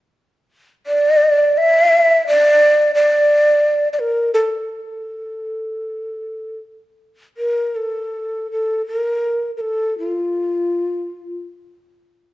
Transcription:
0.87 1.59 D5 loud
1.58 2.26 E5 loud
2.27 2.91 D5 loud
2.95 3.88 D5 loud
3.93 4.01 D5 medium
4.00 4.33 A#4 medium
4.34 6.56 A4 medium
7.37 7.77 A#4 medium
7.76 8.51 A4 medium
8.52 8.86 A4 medium
8.87 9.51 A#4 medium
9.57 9.98 A4 medium
9.57 9.62 A#4 medium
9.99 11.39 F4 medium

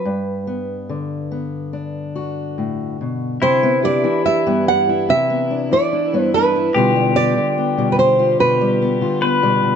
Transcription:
0.00 2.96 B4 medium
0.05 3.36 G2 medium
0.47 1.30 B3 soft
0.89 4.03 D3 soft
1.31 3.36 B3 soft
1.73 3.36 D4 soft
2.16 3.36 F#4 soft
2.58 3.00 A2 soft
3.01 3.41 B2 soft
3.42 4.04 C3 medium
3.42 6.84 E4 medium
3.42 3.84 C5 medium
3.63 4.46 B3 medium
3.83 4.25 D4 medium
3.83 5.10 G4 medium
3.83 4.25 D5 medium
4.04 5.70 E3 medium
4.04 4.87 E4 medium
4.25 4.68 D4 soft
4.25 4.68 E5 medium
4.46 5.08 G2 medium
4.46 5.29 B3 medium
4.68 5.50 D4 medium
4.68 5.10 F#5 medium
4.89 5.71 E4 medium
5.09 5.71 C3 medium
5.09 5.72 E5 medium
5.30 6.12 B3 soft
5.51 5.92 D4 medium
5.71 6.69 E3 medium
5.71 6.54 E4 medium
5.71 6.21 D5 medium
5.90 6.33 D4 medium
5.90 7.11 E4 soft
6.13 6.70 G2 medium
6.13 6.70 B3 soft
6.21 6.34 C5 medium
6.34 6.70 D4 medium
6.34 7.16 B4 medium
6.56 6.75 E4 medium
6.74 7.37 B2 medium
6.74 7.36 D3 medium
6.74 6.95 G3 medium
6.74 7.16 B3 medium
6.74 7.37 F4 medium
6.74 9.30 G4 medium
6.96 7.78 G3 soft
7.16 7.57 B3 medium
7.16 7.88 D5 medium
7.37 9.00 D3 soft
7.37 8.18 F4 medium
7.58 7.99 B3 medium
7.78 8.38 B2 medium
7.78 8.60 G3 medium
7.92 7.98 B4 medium
7.99 8.40 C5 medium
8.19 9.01 F4 medium
8.40 9.02 B2 medium
8.40 9.19 B4 medium
8.61 9.42 G3 soft
8.82 9.22 B3 medium
9.01 9.76 D3 medium
9.01 9.76 F4 soft
9.22 9.76 B3 medium
9.22 9.76 B4 loud
9.42 9.62 B2 medium
9.42 9.76 G3 medium
9.63 9.76 B2 medium

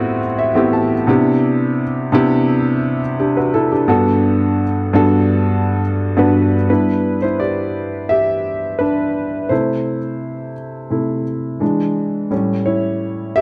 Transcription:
0.00 0.55 A2 medium
0.00 0.56 B3 medium
0.00 0.56 C4 medium
0.00 0.57 E4 medium
0.00 1.10 F4 medium
0.00 0.24 F#4 medium
0.00 0.57 G4 medium
0.39 0.71 E5 medium
0.55 0.93 A2 medium
0.55 0.93 B3 medium
0.55 0.93 C4 medium
0.55 0.93 E4 medium
0.55 0.94 G4 medium
0.73 1.06 A5 medium
1.07 1.82 C3 medium
1.07 1.82 B3 medium
1.07 1.83 D4 medium
1.07 1.83 E4 medium
1.07 1.83 G4 medium
2.12 3.00 C3 medium
2.12 3.00 B3 medium
2.12 3.00 D4 medium
2.12 3.01 E4 medium
2.12 3.01 G4 loud
3.20 3.36 D4 medium
3.20 3.36 G4 medium
3.37 3.54 F#4 medium
3.37 3.53 B4 medium
3.54 3.71 E4 medium
3.54 3.70 A4 medium
3.72 3.87 D4 medium
3.72 4.05 G4 medium
3.88 4.63 G2 medium
3.88 4.63 B3 medium
3.88 4.63 D4 medium
3.88 4.64 F#4 medium
3.88 4.64 A4 medium
4.93 5.81 G2 medium
4.93 5.81 B3 medium
4.93 5.81 D4 medium
4.93 5.82 F#4 medium
4.93 5.82 A4 loud
6.16 6.54 G2 medium
6.16 6.54 B3 medium
6.16 6.54 D4 medium
6.16 6.55 F#4 medium
6.16 6.55 B4 medium
6.69 7.16 G3 soft
6.69 7.16 B3 soft
6.69 7.19 D4 medium
6.69 7.17 E4 medium
6.69 7.24 B4 medium
7.22 7.39 E4 soft
7.22 7.38 C5 medium
7.40 8.06 G4 medium
7.40 8.12 D5 medium
8.09 8.77 G4 medium
8.09 8.82 E5 medium
8.79 9.47 D4 medium
8.79 9.52 B4 medium
9.49 9.97 C3 soft
9.49 9.97 A3 soft
9.49 10.53 E4 medium
9.49 10.51 C5 medium
10.90 11.22 C3 soft
10.90 11.23 A3 soft
10.90 11.23 E4 soft
11.60 12.28 E3 soft
11.60 12.28 G#3 soft
11.60 12.28 D4 soft
12.30 13.32 A2 soft
12.30 13.33 G3 soft
12.30 13.33 C#4 soft
12.66 13.33 E4 soft
12.66 13.39 C#5 medium
13.36 13.41 G4 medium
13.36 13.41 E5 loud

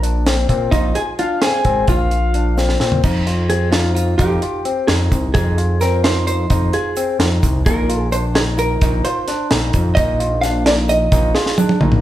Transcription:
0.00 0.45 A#1 loud
0.00 0.23 D4 medium
0.00 closed hi-hat medium
0.26 0.47 C4 medium
0.26 snare loud
0.26 closed hi-hat medium
0.26 shaker soft
0.49 0.70 A#2 medium
0.49 0.70 C4 medium
0.49 kick medium
0.49 closed hi-hat medium
0.71 0.93 A#1 medium
0.71 0.96 D#4 medium
0.71 1.13 F4 medium
0.71 0.94 D#5 medium
0.71 kick medium
0.71 closed hi-hat medium
0.71 shaker soft
0.95 1.02 G#4 loud
0.95 1.06 G#5 medium
0.95 closed hi-hat medium
1.19 1.39 D4 medium
1.19 1.40 F4 medium
1.19 1.40 F5 medium
1.19 closed hi-hat medium
1.42 1.63 C4 medium
1.42 1.89 G#4 loud
1.42 1.85 G#5 medium
1.42 snare loud
1.42 closed hi-hat medium
1.42 shaker soft
1.65 1.86 G#1 medium
1.65 1.85 C4 medium
1.65 kick medium
1.65 closed hi-hat medium
1.88 2.76 A#1 loud
1.88 2.29 F4 medium
1.88 2.77 F4 medium
1.88 2.77 F5 medium
1.88 kick loud
1.88 closed hi-hat medium
1.88 shaker soft
2.11 closed hi-hat soft
2.34 2.55 D4 medium
2.34 closed hi-hat medium
2.57 2.78 C4 medium
2.57 snare medium
2.57 shaker soft
2.69 snare soft
2.80 3.02 A#2 medium
2.80 3.01 C4 medium
2.80 snare medium
2.92 floor tom medium
3.03 4.15 F2 loud
3.03 3.24 D#4 medium
3.03 kick loud
3.03 crash medium
3.03 shaker medium
3.27 3.47 F4 medium
3.27 snare soft
3.27 closed hi-hat medium
3.50 3.70 C4 medium
3.50 3.71 G#4 loud
3.50 closed hi-hat medium
3.72 4.14 D#4 medium
3.72 3.94 F4 medium
3.72 snare loud
3.72 closed hi-hat medium
3.95 4.17 F4 medium
3.95 closed hi-hat medium
3.95 shaker medium
4.18 4.40 F2 loud
4.18 4.39 D#4 medium
4.18 4.84 G4 medium
4.18 kick loud
4.18 closed hi-hat medium
4.18 shaker medium
4.42 4.63 F4 medium
4.42 closed hi-hat medium
4.65 4.86 C4 medium
4.65 closed hi-hat medium
4.87 5.10 F2 medium
4.87 5.30 D#4 medium
4.87 4.94 G#4 medium
4.87 snare loud
4.87 closed hi-hat medium
5.12 5.33 C2 medium
5.12 kick medium
5.12 closed hi-hat medium
5.12 shaker medium
5.34 6.46 F2 loud
5.34 5.55 D#4 medium
5.34 5.82 G#4 medium
5.34 kick loud
5.34 closed hi-hat medium
5.34 shaker medium
5.58 5.78 F4 medium
5.58 closed hi-hat medium
5.81 6.02 C4 medium
5.81 6.04 A#4 medium
5.81 snare soft
5.81 closed hi-hat medium
5.81 shaker medium
6.04 6.45 D#4 medium
6.04 6.26 C5 medium
6.04 snare loud
6.04 closed hi-hat medium
6.27 6.75 C5 medium
6.27 closed hi-hat medium
6.27 shaker medium
6.50 6.71 F2 loud
6.50 6.71 D#4 medium
6.50 kick medium
6.50 closed hi-hat medium
6.50 shaker medium
6.73 6.94 F4 medium
6.73 7.17 G#4 medium
6.73 closed hi-hat medium
6.96 7.17 C4 medium
6.96 closed hi-hat medium
6.96 shaker medium
7.19 7.40 F2 medium
7.19 7.61 D#4 medium
7.19 snare loud
7.19 closed hi-hat medium
7.43 7.64 C2 medium
7.43 kick medium
7.43 closed hi-hat medium
7.43 shaker medium
7.66 8.77 A#1 loud
7.66 7.86 D#4 medium
7.66 8.09 A#4 medium
7.66 kick loud
7.66 closed hi-hat medium
7.66 shaker medium
7.89 8.10 F4 medium
7.89 closed hi-hat medium
8.12 8.33 D4 medium
8.12 8.18 C5 medium
8.12 closed hi-hat medium
8.12 shaker medium
8.35 8.76 D#4 medium
8.35 8.42 G#4 medium
8.35 snare loud
8.35 closed hi-hat medium
8.58 9.04 A#4 medium
8.58 closed hi-hat medium
8.58 shaker medium
8.81 9.02 A#1 loud
8.81 9.02 D#4 medium
8.81 kick loud
8.81 closed hi-hat medium
8.81 shaker medium
9.04 9.25 F4 medium
9.04 9.47 C5 medium
9.04 closed hi-hat medium
9.28 9.48 D4 medium
9.28 snare soft
9.28 closed hi-hat medium
9.51 9.72 A#1 loud
9.51 9.92 D#4 medium
9.51 snare loud
9.51 closed hi-hat medium
9.73 9.95 F2 medium
9.73 kick medium
9.73 closed hi-hat medium
9.73 shaker soft
9.95 11.08 A#1 loud
9.95 10.17 D#4 medium
9.95 10.41 D#5 loud
9.95 kick loud
9.95 closed hi-hat medium
9.95 shaker soft
10.20 10.40 F4 medium
10.20 closed hi-hat medium
10.41 10.63 D4 medium
10.41 10.63 F5 loud
10.41 snare soft
10.41 closed hi-hat medium
10.41 shaker medium
10.66 11.07 D#4 medium
10.66 10.72 D5 medium
10.66 snare loud
10.66 closed hi-hat medium
10.89 11.37 D#5 loud
10.89 closed hi-hat medium
10.89 shaker medium
11.12 11.33 A#1 loud
11.12 11.32 D#4 medium
11.12 kick loud
11.12 closed hi-hat medium
11.12 shaker medium
11.35 11.55 F4 medium
11.35 11.78 G#4 medium
11.35 snare medium
11.46 snare medium
11.58 11.78 D4 medium
11.58 high tom medium
11.58 shaker medium
11.69 high tom medium
11.80 12.01 A#1 loud
11.80 12.01 D#4 medium
11.80 mid tom medium
11.92 mid tom medium

